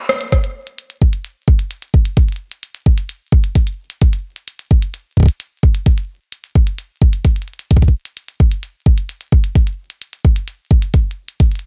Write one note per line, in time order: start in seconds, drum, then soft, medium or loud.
0.09 cross-stick loud
0.21 closed hi-hat medium
0.32 kick medium
0.32 cross-stick medium
0.32 closed hi-hat medium
0.44 closed hi-hat soft
0.67 closed hi-hat soft
0.78 closed hi-hat medium
0.90 closed hi-hat soft
1.02 kick medium
1.13 closed hi-hat soft
1.25 closed hi-hat medium
1.48 kick loud
1.59 closed hi-hat soft
1.71 closed hi-hat medium
1.82 closed hi-hat soft
1.94 kick loud
2.05 closed hi-hat medium
2.17 kick loud
2.17 closed hi-hat medium
2.29 closed hi-hat soft
2.32 closed hi-hat soft
2.36 closed hi-hat soft
2.52 closed hi-hat soft
2.63 closed hi-hat medium
2.75 closed hi-hat soft
2.86 kick loud
2.98 closed hi-hat medium
3.09 closed hi-hat medium
3.32 kick loud
3.44 closed hi-hat soft
3.55 kick medium
3.55 closed hi-hat medium
3.67 closed hi-hat soft
3.90 closed hi-hat medium
4.01 kick loud
4.01 closed hi-hat medium
4.13 closed hi-hat soft
4.36 closed hi-hat soft
4.48 closed hi-hat medium
4.59 closed hi-hat soft
4.71 kick loud
4.82 closed hi-hat soft
4.94 closed hi-hat medium
5.17 kick medium
5.20 kick medium
5.23 kick medium
5.26 kick medium
5.26 closed hi-hat soft
5.40 closed hi-hat medium
5.63 kick loud
5.75 closed hi-hat medium
5.86 kick loud
5.86 closed hi-hat medium
5.98 closed hi-hat soft
6.32 closed hi-hat medium
6.44 closed hi-hat soft
6.55 kick loud
6.67 closed hi-hat soft
6.78 closed hi-hat medium
7.02 kick loud
7.13 closed hi-hat soft
7.25 kick medium
7.25 closed hi-hat medium
7.36 closed hi-hat soft
7.42 closed hi-hat soft
7.48 closed hi-hat soft
7.54 closed hi-hat soft
7.59 closed hi-hat soft
7.71 kick medium
7.71 closed hi-hat medium
7.77 kick medium
7.82 kick medium
7.82 closed hi-hat soft
7.88 kick medium
8.05 closed hi-hat soft
8.17 closed hi-hat medium
8.28 closed hi-hat soft
8.40 kick loud
8.52 closed hi-hat soft
8.63 closed hi-hat medium
8.86 kick loud
8.98 closed hi-hat soft
9.09 closed hi-hat medium
9.21 closed hi-hat soft
9.32 kick loud
9.44 closed hi-hat soft
9.55 kick medium
9.55 closed hi-hat medium
9.67 closed hi-hat soft
9.90 closed hi-hat soft
10.02 closed hi-hat medium
10.13 closed hi-hat soft
10.25 kick medium
10.36 closed hi-hat soft
10.48 closed hi-hat medium
10.71 kick loud
10.82 closed hi-hat soft
10.94 kick medium
10.94 closed hi-hat medium
11.11 closed hi-hat soft
11.28 closed hi-hat soft
11.40 kick medium
11.40 closed hi-hat medium
11.52 closed hi-hat soft
11.55 closed hi-hat soft
11.59 closed hi-hat soft